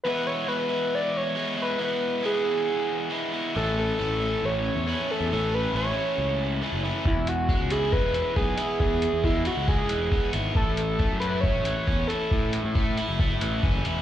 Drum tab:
HH |--------|--------|--------|--------|
BD |--------|--------|--------|--------|

HH |-x-x-x-x|-x-x-x-x|-x-x-x-x|-x-x-x-x|
BD |o-o-o-o-|o-o-o-o-|o-o-o-o-|o-o-o-o-|